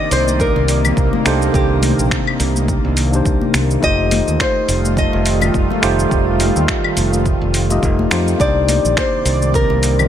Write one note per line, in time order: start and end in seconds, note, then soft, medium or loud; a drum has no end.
0.00 3.79 C3 medium
0.00 3.79 D#3 medium
0.00 1.22 A#3 medium
0.00 3.79 A#3 medium
0.00 1.22 D4 medium
0.00 1.23 D#4 medium
0.00 1.23 G4 medium
0.00 1.24 C5 medium
0.00 1.52 D5 loud
0.11 0.49 C2 medium
0.11 0.41 C5 loud
0.11 open hi-hat medium
0.11 shaker medium
0.27 high conga medium
0.27 shaker soft
0.40 1.26 A#4 medium
0.40 kick loud
0.40 shaker soft
0.56 0.91 C2 loud
0.56 muted conga soft
0.68 open hi-hat medium
0.68 shaker medium
0.85 muted conga medium
0.85 low conga medium
0.85 claves medium
0.85 shaker soft
0.97 1.09 C2 medium
0.97 kick loud
0.97 shaker soft
1.13 high conga loud
1.13 low conga medium
1.25 1.47 C2 medium
1.25 1.51 A#3 medium
1.25 1.51 D4 medium
1.25 1.51 D#4 medium
1.25 1.52 G4 medium
1.25 1.55 A4 medium
1.25 1.52 C5 loud
1.25 finger snap medium
1.25 open hi-hat medium
1.25 shaker medium
1.42 shaker soft
1.52 1.92 C2 loud
1.52 3.08 A#3 medium
1.52 3.09 D4 medium
1.52 3.10 D#4 medium
1.52 3.51 G4 medium
1.52 3.10 G4 medium
1.52 kick loud
1.52 shaker soft
1.57 3.11 C5 medium
1.82 open hi-hat medium
1.82 muted conga medium
1.82 high conga medium
1.82 shaker medium
1.99 2.08 A#1 medium
1.99 low conga medium
1.99 shaker soft
2.11 finger snap medium
2.11 kick loud
2.11 shaker soft
2.27 claves medium
2.40 2.77 C2 medium
2.40 open hi-hat medium
2.40 shaker medium
2.56 high conga medium
2.56 shaker soft
2.68 kick loud
2.68 shaker soft
2.85 3.20 C2 loud
2.97 open hi-hat medium
2.97 shaker medium
3.11 3.79 A#3 medium
3.11 3.79 D4 medium
3.11 3.80 D#4 medium
3.11 3.80 G4 medium
3.11 shaker soft
3.16 3.81 C5 medium
3.25 3.37 C2 medium
3.25 kick loud
3.25 shaker soft
3.41 high conga medium
3.54 3.76 C2 medium
3.54 finger snap medium
3.54 open hi-hat loud
3.54 muted conga medium
3.54 shaker medium
3.70 shaker soft
3.80 4.20 F1 loud
3.80 8.36 D#3 medium
3.80 8.36 G3 medium
3.80 5.79 A3 medium
3.80 8.36 A3 medium
3.80 5.79 D#4 medium
3.80 8.36 F4 loud
3.80 5.80 F4 medium
3.80 5.80 G4 medium
3.80 4.41 D#5 loud
3.80 kick medium
3.80 shaker soft
3.85 5.81 C5 medium
4.11 open hi-hat medium
4.11 muted conga soft
4.11 high conga medium
4.11 shaker medium
4.27 4.36 D#2 medium
4.27 low conga medium
4.27 shaker soft
4.40 4.94 C5 loud
4.40 finger snap medium
4.40 kick loud
4.40 shaker soft
4.68 5.06 F1 medium
4.68 open hi-hat medium
4.68 shaker medium
4.85 high conga medium
4.85 shaker soft
4.97 7.79 D#5 medium
4.97 kick loud
4.97 shaker soft
5.13 5.49 F1 loud
5.13 muted conga soft
5.26 open hi-hat medium
5.26 shaker medium
5.41 muted conga medium
5.41 low conga medium
5.41 claves medium
5.41 shaker soft
5.54 5.66 F1 medium
5.54 kick loud
5.54 shaker soft
5.71 high conga medium
5.71 low conga medium
5.82 6.04 F1 medium
5.82 6.08 A3 loud
5.82 6.08 D#4 medium
5.82 6.08 F4 medium
5.82 6.09 G4 medium
5.82 6.09 C5 loud
5.82 finger snap medium
5.82 open hi-hat medium
5.82 shaker medium
5.99 shaker soft
6.09 6.49 F1 medium
6.09 7.65 A3 medium
6.09 7.66 D#4 medium
6.09 7.66 F4 medium
6.09 7.67 G4 medium
6.09 kick loud
6.09 shaker soft
6.14 7.68 C5 medium
6.40 open hi-hat medium
6.40 muted conga medium
6.40 high conga medium
6.40 shaker medium
6.56 6.65 D#2 medium
6.56 low conga medium
6.56 shaker soft
6.68 finger snap medium
6.68 kick loud
6.68 shaker soft
6.84 claves medium
6.97 7.34 F1 medium
6.97 open hi-hat medium
6.97 muted conga medium
6.97 shaker medium
7.13 high conga medium
7.13 shaker soft
7.26 kick loud
7.26 shaker soft
7.41 7.77 F1 medium
7.54 open hi-hat medium
7.54 shaker medium
7.69 8.08 A3 medium
7.69 8.08 D#4 medium
7.69 8.08 F4 medium
7.69 8.09 G4 medium
7.69 8.09 D#5 medium
7.69 muted conga medium
7.69 shaker soft
7.83 8.04 F1 loud
7.83 kick loud
7.83 shaker soft
7.99 high conga medium
8.10 8.33 F2 medium
8.10 8.36 A3 medium
8.10 8.37 D#4 medium
8.10 8.37 F4 medium
8.10 8.37 G4 medium
8.10 8.38 C5 medium
8.10 finger snap medium
8.10 open hi-hat medium
8.10 muted conga medium
8.10 shaker medium
8.28 shaker soft
8.38 8.77 C2 medium
8.38 10.08 C3 medium
8.38 10.08 D#3 medium
8.38 10.08 A#3 medium
8.38 10.08 D4 medium
8.38 10.08 D#4 medium
8.38 10.08 G4 medium
8.38 10.08 D5 medium
8.38 8.98 D5 loud
8.38 kick loud
8.38 shaker soft
8.42 10.08 C5 medium
8.69 open hi-hat medium
8.69 muted conga soft
8.69 high conga medium
8.69 shaker medium
8.84 8.93 A#1 medium
8.84 low conga medium
8.84 shaker soft
8.97 9.56 C5 loud
8.97 finger snap medium
8.97 kick loud
8.97 shaker soft
9.25 9.63 C2 medium
9.25 open hi-hat medium
9.25 shaker medium
9.42 high conga medium
9.42 shaker soft
9.54 10.08 A#4 loud
9.54 kick loud
9.54 shaker soft
9.70 10.06 C2 medium
9.70 muted conga soft
9.83 open hi-hat medium
9.83 shaker medium
9.99 muted conga medium
9.99 low conga loud
9.99 claves medium
9.99 shaker soft